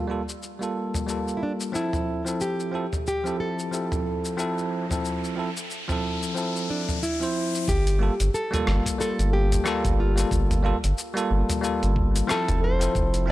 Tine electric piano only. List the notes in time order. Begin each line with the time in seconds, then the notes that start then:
0.08 G3 A#3 F4 A4
0.59 G3 A#3 F4 A4
1.06 G3 A#3 F4 A4
1.72 F3 C4 E4 A4
2.25 F3 C4 E4 A4
2.71 F3 C4 E4 A4
3.24 F3 C4 E4 A4
3.71 F3 C4 E4 A4
4.37 F3 C4 E4 A4
4.89 F3 C4 E4 A4
5.35 F3 C4 E4 A4
5.88 F3 C4 E4 A4
6.34 F3 C4 E4 A4
7.20 F3 C4 E4 C5
7.99 G3 A#3 F4 A4
8.51 G3 A#3 F4 A4
8.98 G3 A#3 F4 A4
9.64 G3 A#3 F4 A4
10.16 G3 A#3 F4 A4
10.62 G3 A#3 F4 A4
11.14 G3 A#3 F4 A4
11.61 G3 A#3 F4 A4
12.27 F3 C4 E4 A4
12.79 F3 C4 E4 A4
13.26 F3 C4 E4